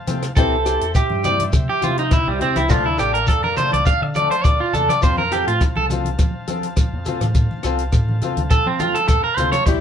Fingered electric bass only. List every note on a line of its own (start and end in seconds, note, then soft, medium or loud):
0.07 0.21 F3 medium
0.37 0.77 C2 medium
0.82 0.94 E2 medium
1.10 1.49 G2 medium
1.53 1.67 C3 loud
1.82 2.29 C3 medium
2.27 2.39 C2 medium
2.56 2.69 C#2 medium
2.70 2.96 D2 loud
2.99 3.25 A1 medium
3.28 3.54 F2 medium
3.73 3.85 C2 medium
4.02 4.28 D3 medium
4.45 4.58 D2 medium
4.75 4.88 E2 medium
5.03 5.44 F2 medium
5.47 5.60 A2 medium
5.76 6.15 C2 medium
6.19 6.33 F3 medium
6.48 6.94 F3 medium
6.93 7.05 F2 medium
7.21 7.47 A2 medium
7.64 7.90 C2 medium
7.93 8.19 A2 medium
8.37 8.50 D2 medium
8.66 8.92 F3 medium
9.09 9.23 F2 medium
9.38 9.52 D2 medium
9.66 9.81 C2 medium